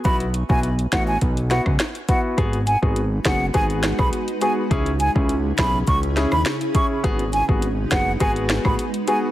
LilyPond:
<<
  \new Staff \with { instrumentName = "Flute" } { \time 4/4 \key gis \minor \tempo 4 = 103 b''16 r8 gis''16 r8 fis''16 gis''16 r8 fis''16 r8. fis''16 r16 | r8 gis''16 r8. fis''8 gis''16 r8 b''16 r8 gis''16 r16 | r8 gis''16 r8. b''8 cis'''16 r8 b''16 r8 cis'''16 r16 | r8 gis''16 r8. fis''8 gis''16 r8 b''16 r8 gis''16 r16 | }
  \new Staff \with { instrumentName = "Grand piano" } { \time 4/4 \key gis \minor <b e' fis'>16 r8 <b e' fis'>16 r8 <b e' fis'>16 r8. <b e' fis'>16 r8. <b e' fis'>8 | <b fis' gis'>16 r8 <b fis' gis'>16 r8 <b fis' gis'>16 r16 <b fis' gis'>8. <b fis' gis'>16 r8 <b fis' gis'>16 r16 | <cis' e' gis'>16 r8 <cis' e' gis'>16 r8 <cis' e' gis'>16 r8. <cis' e' gis'>16 r8. <cis' e' gis'>8 | <b fis' gis'>16 r8 <b fis' gis'>16 r8 <b fis' gis'>16 r16 <b fis' gis'>8. <b fis' gis'>16 r8 <b fis' gis'>16 r16 | }
  \new Staff \with { instrumentName = "Ambient pad" } { \time 4/4 \key gis \minor r1 | <gis dis' fis' b'>1 | <cis cis' e' gis'>1 | <gis dis' fis' b'>1 | }
  \new Staff \with { instrumentName = "Analog synth bass" } { \clef bass \time 4/4 \key gis \minor b,,8. b,,8. a,,8 b,,8. cis,16 r4 | gis,,8. gis,,8. fis,,8 gis,,8. b,,16 r4 | cis,8. cis,8. b,,8 cis,8. dis,16 r4 | gis,,8. gis,,8. fis,,8 gis,,8. a,,16 r4 | }
  \new DrumStaff \with { instrumentName = "Drums" } \drummode { \time 4/4 <hh bd>16 hh16 hh16 bd16 hh16 hh16 <hh bd ss sn>8 <hh bd>16 hh16 <hh sn>16 <bd ss>16 <hh ss sn>16 hh16 <hh bd>8 | <hh bd>16 hh16 hh16 bd16 hh8 <hh bd ss sn>8 <hh bd>16 hh16 <hh ss sn>16 <bd ss>16 hh16 hh16 hh8 | <hh bd>16 hh16 hh16 bd16 hh8 <hh bd ss sn>8 <hh bd>16 hh16 <hh sn>16 ss16 <hh ss sn>16 hh16 <hh bd>8 | <hh bd>16 hh16 hh16 bd16 hh8 <hh bd ss sn>8 <hh bd>16 hh16 <hh ss sn>16 <bd ss>16 hh16 hh16 hh8 | }
>>